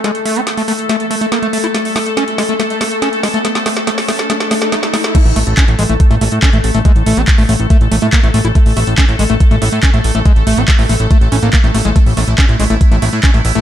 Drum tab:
CC |----------------|----------------|----------------|x---------------|
HH |xxoxxooxxxoxxxox|xooxxxoxxxoxxxox|xxoxxooxxxoxxxox|xooxxxoxxxoxxxox|
CP |----------------|----------------|----------------|----x-------x---|
SD |o---o---o---o---|o-o-o-o-o-o-o-o-|oooooooooooooooo|----------------|
BD |----------------|----------------|----------------|o---o---o---o---|

CC |----------------|----------------|----------------|----------------|
HH |xxoxxooxxxoxxxox|xooxxxoxxxoxxxox|xxoxxooxxxoxxxox|xooxxxoxxxoxxxox|
CP |----x-------x---|----x-------x---|----x-------x---|----x-------x---|
SD |----------------|----------------|----------------|----------------|
BD |o---o---o---o---|o---o---o---o---|o---o---o---o---|o---o---o---o---|